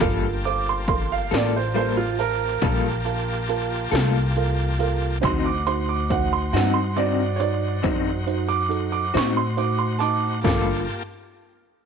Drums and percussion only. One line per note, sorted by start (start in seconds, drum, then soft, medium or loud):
0.01 kick loud
0.01 closed hi-hat medium
0.44 closed hi-hat medium
0.88 kick medium
0.88 closed hi-hat medium
1.31 snare loud
1.31 closed hi-hat medium
1.75 closed hi-hat medium
2.19 closed hi-hat medium
2.62 kick loud
2.62 closed hi-hat medium
3.06 closed hi-hat medium
3.50 closed hi-hat medium
3.92 snare loud
3.92 closed hi-hat medium
4.36 closed hi-hat medium
4.80 closed hi-hat medium
5.23 kick loud
5.23 closed hi-hat medium
5.67 closed hi-hat medium
6.10 kick medium
6.10 closed hi-hat medium
6.54 snare loud
6.54 closed hi-hat medium
6.98 closed hi-hat medium
7.40 closed hi-hat medium
7.84 kick medium
7.84 closed hi-hat medium
8.28 closed hi-hat medium
8.71 closed hi-hat medium
9.15 snare loud
9.15 closed hi-hat medium
9.58 closed hi-hat medium
10.02 closed hi-hat medium
10.45 kick loud
10.45 snare loud
10.45 open hi-hat medium